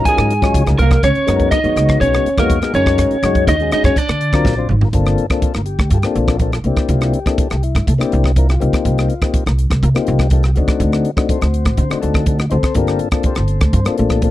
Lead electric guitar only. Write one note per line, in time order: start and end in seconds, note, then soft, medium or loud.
0.05 0.81 G#5 loud
0.79 1.02 A#4 medium
1.04 1.51 C#5 medium
1.51 2.01 D#5 medium
2.01 2.38 C#5 medium
2.39 2.72 A#4 medium
2.75 3.44 C#5 medium
3.49 3.71 D#5 medium
3.73 3.85 D#5 medium
3.85 3.98 C#5 medium
3.98 4.70 D5 medium